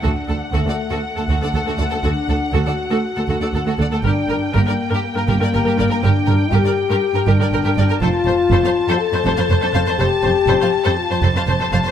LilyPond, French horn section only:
\new Staff \with { instrumentName = "French horn section" } { \time 4/4 \key d \phrygian \tempo 4 = 121 d'4 a4 a2 | d'4 fis'2~ fis'8 r8 | d'4 bes4 bes2 | d'4 g'4. d'4. |
f'2 a'2 | g'2 f'8 r4. | }